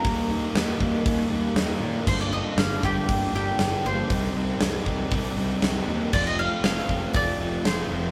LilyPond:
<<
  \new Staff \with { instrumentName = "Mandolin" } { \time 4/4 \key g \minor \tempo 4 = 118 <bes' bes''>4. r2 r8 | <c'' c'''>16 <d'' d'''>16 <ees'' ees'''>8 <f'' f'''>8 <g' g''>4 <g' g''>4 <c'' c'''>8~ | <c'' c'''>4. r2 r8 | <d'' d'''>16 <ees'' ees'''>16 <f'' f'''>8 <f'' f'''>4 <d'' d'''>4 <c'' c'''>4 | }
  \new Staff \with { instrumentName = "Distorted electric guitar" } { \time 4/4 \key g \minor <ees g bes ees'>8 <ees g bes ees'>4 <g bes ees'>4 <g bes ees'>8 <ees g bes ees'>8 <g bes ees'>8 | <g, d g bes d'>8 <g, d g bes d'>4 <g bes d'>4 <g bes d'>8 <d g bes d'>8 <g bes d'>8 | <c g c' ees'>8 <c g c' ees'>4 <g c' ees'>4 <g c' ees'>8 <c g c' ees'>8 <g c' ees'>8 | <f a c' f'>8 <f a c' f'>4 <a c' f'>4 <a c' f'>8 <f a c' f'>8 <a c' f'>8 | }
  \new Staff \with { instrumentName = "Distorted electric guitar" } { \time 4/4 \key g \minor <ees g bes ees'>8 <g bes ees'>8 <ees g bes ees'>8 <ees g bes ees'>8 <ees g bes ees'>8 <ees g bes ees'>8 <ees g bes ees'>8 <g bes ees'>8 | <g, d g bes d'>8 <g bes d'>8 <d g bes d'>8 <g, d g bes d'>8 <d g bes d'>8 <g, d g bes d'>8 <d g bes d'>8 <g bes d'>8 | <c g c' ees'>8 <g c' ees'>8 <c g c' ees'>8 <c g c' ees'>8 <c g c' ees'>8 <c g c' ees'>8 <c g c' ees'>8 <g c' ees'>8 | <f a c' f'>8 <a c' f'>8 <f a c' f'>8 <f a c' f'>8 <f a c' f'>8 <f a c' f'>8 <f a c' f'>8 <a c' f'>8 | }
  \new Staff \with { instrumentName = "Picked electric bass" } { \clef bass \time 4/4 \key g \minor ees,8 ees,8 ees,8 ees,8 ees,8 ees,8 ees,8 bes,8 | g,,4 g,,8 g,,8 g,,8 g,,8 g,,8 g,,8 | c,8 c,8 c,8 c,8 c,8 c,8 c,8 ees,8 | f,,4 f,,8 f,,8 f,,8 f,,8 f,,8 f,,8 | }
  \new DrumStaff \with { instrumentName = "Drums" } \drummode { \time 4/4 <hho bd>4 <hho sn>8 bd8 <hho bd>4 <hho sn>4 | <cymc bd>4 <hho sn>8 bd8 <hho bd>4 <hho sn>4 | <hho bd>4 <hho sn>8 bd8 <hho bd>4 <hho sn>4 | <cymc bd>4 <hho sn>16 sn16 bd8 <hho bd>4 <hho sn>4 | }
>>